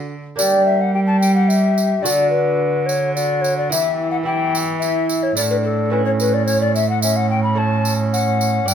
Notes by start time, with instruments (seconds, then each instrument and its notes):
Already playing: lute D3 A3 D4 F#4, cello D3, bassoon F#4
0.36 cello G3, lute G3 A#3 D4 G4, bassoon G4, recorder D5, tambourine
0.65 recorder E5
0.81 recorder F#5
0.94 bassoon G4, recorder G5
1.07 recorder A5
1.20 recorder G5, tambourine
1.35 recorder F#5
1.48 recorder E5, tambourine
1.78 tambourine
2.02 cello D3, lute D3 D4 F#4 A4, recorder D5, tambourine
2.07 bassoon F#4
2.30 recorder B4
2.86 recorder C#5, tambourine
3.15 bassoon F#4, recorder D5, tambourine
3.41 recorder C#5, tambourine
3.57 recorder D5
3.69 cello E3, lute E3 B3 E4 G4, bassoon E4, recorder E5, tambourine
4.11 recorder F#5
4.23 lute B3 E4 G4, bassoon E4, recorder G5
4.55 tambourine
4.80 bassoon E4, recorder E5, tambourine
5.09 tambourine
5.23 recorder C#5
5.35 cello A2, lute A2 A3 D4 E4, bassoon D4, recorder D5, tambourine
5.50 recorder B4
5.64 recorder A4
5.90 lute A3 C#4 E4, bassoon C#4, recorder B4
6.05 recorder C#5
6.20 recorder B4, tambourine
6.34 recorder D5
6.46 bassoon C#4, recorder C#5, tambourine
6.61 recorder D5
6.75 recorder E5, tambourine
6.90 recorder F#5
7.02 bassoon C#4, recorder E5, tambourine
7.16 recorder F#5
7.30 recorder G5
7.43 recorder B5
7.55 lute A3 C#4 E4, recorder A5
7.60 bassoon C#4
7.85 tambourine
8.13 recorder F#5, tambourine
8.41 tambourine
8.65 cello G2, lute G2 D4 G4, bassoon D4, recorder G5, tambourine